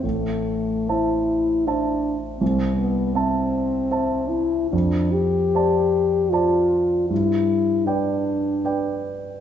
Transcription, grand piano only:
X:1
M:3/4
L:1/8
Q:1/4=78
K:Am
V:1 name="Grand piano"
A,,,2 [cea]2 [cea]2 | C,,2 [cea]2 [cea]2 | F,,2 [cda]2 [cda]2 | G,,2 [Bdg]2 [Bdg]2 |]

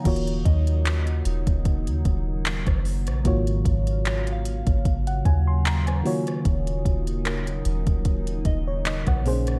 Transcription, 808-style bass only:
X:1
M:4/4
L:1/16
Q:"Swing 16ths" 1/4=75
K:Ebm
V:1 name="808-style bass" clef=bass
E,,,2 E,,4 E,,, E,,,2 E,, E,,,3 G,,,2 B,,, | A,,,2 A,,,4- A,,, A,,,3 E,,4 z2 | E,,,2 E,,,4 E,,, E,,,3 E,,,3 B,,,3 |]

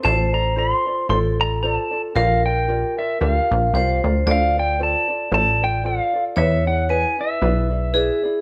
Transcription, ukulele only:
X:1
M:4/4
L:1/8
Q:"Swing" 1/4=114
K:Dm
V:1 name="Ukulele"
[FAcd] [FAd] [FAcd] [FAd] [FAcd] [FAd] [FAcd] [FAd] | [FGBd] [FBd] [FGBd] [FBd] [FGBd] [FBd] [FGBd] [FBd] | [FAcd] [FAd] [FAcd] [FAd] [FAcd] [FAd] [FAcd] [FAd] | [E^G=Bd] [EGd] [EGBd] [EGd] [EGBd] [EGd] [EGBd] [EGd] |]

